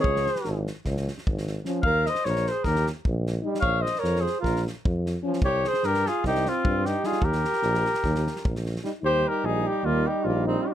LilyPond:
<<
  \new Staff \with { instrumentName = "Flugelhorn" } { \time 9/8 \key ees \mixolydian \tempo 4. = 100 des''4. r2. | f''8 ees''8 des''8 c''8 bes'8 r2 | f''8 ees''8 des''8 c''8 bes'8 r2 | des''8 c''8 bes'8 aes'8 g'8 f'4 g'8 aes'8 |
bes'2.~ bes'8 r4 | c''8 bes'8 aes'8 g'8 f'8 g'8 f'8 ees'8 f'32 g'32 r16 | }
  \new Staff \with { instrumentName = "Alto saxophone" } { \time 9/8 \key ees \mixolydian aes'4. r2. | bes'8 c''8 bes'8 aes'8 g'8 r2 | des''8 c''8 bes'8 aes'8 f'8 r2 | g'8 aes'8 g'8 f'8 ees'8 c'4 ees'8 f'8 |
g'2.~ g'8 r4 | g'8 g'8 ees'8 ees'8 bes8 ees'8 bes8 c'8 des'32 ees'32 r16 | }
  \new Staff \with { instrumentName = "French horn" } { \time 9/8 \key ees \mixolydian r1 des'8~ | des'8 r2. r8 ees'8~ | ees'8 r2. r8 des'8~ | des'8 r2. r8 ees'8~ |
ees'8 r2. r8 ees'8 | ees'1~ ees'8 | }
  \new Staff \with { instrumentName = "Trombone" } { \clef bass \time 9/8 \key ees \mixolydian r1 f8~ | f8 r2. r8 g8~ | g8 r2. r8 f8~ | f8 r2. r8 g8~ |
g8 r2. r8 g8 | g1~ g8 | }
  \new Staff \with { instrumentName = "Tuba" } { \clef bass \time 9/8 \key ees \mixolydian des,4 aes,,4 des,4 aes,,4. | ees,4 bes,,4 ees,4 bes,,4. | bes,,4 f,4 bes,,4 f,4. | c,4 g,4 c,4 g,4. |
ees,4 bes,,4 ees,4 bes,,4. | ees,4 bes,,4 ees,4 bes,,4. | }
  \new DrumStaff \with { instrumentName = "Drums" } \drummode { \time 9/8 bd16 sn16 sn16 sn16 sn8 sn8 <bd sn>16 sn16 sn16 sn16 bd16 sn16 sn8 sn8 | bd8 sn16 sn16 sn16 sn16 sn8 <bd sn>16 sn16 sn8 bd8 sn8. sn16 | bd8 sn16 sn16 sn16 sn16 sn8 <bd sn>16 sn16 sn8 bd8 sn8. sn16 | bd8 sn16 sn16 sn16 sn16 sn8 <bd sn>16 sn16 sn8 bd8 sn8 sn16 sn16 |
bd16 sn16 sn16 sn16 sn16 sn16 sn16 sn16 <bd sn>16 sn16 sn16 sn16 bd16 sn16 sn16 sn16 sn8 | r4 r4 r4 r4. | }
>>